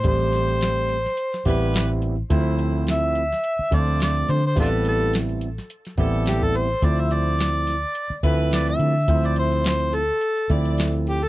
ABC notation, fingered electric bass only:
X:1
M:4/4
L:1/8
Q:"Swing 16ths" 1/4=106
K:Ddor
V:1 name="Fingered electric bass" clef=bass
A,,,4 z A,,,3 | D,,4 z D,,2 D, | A,,,4 z A,,,3 | D,,4 z D,,2 D, |
D,,4 z D,,3 |]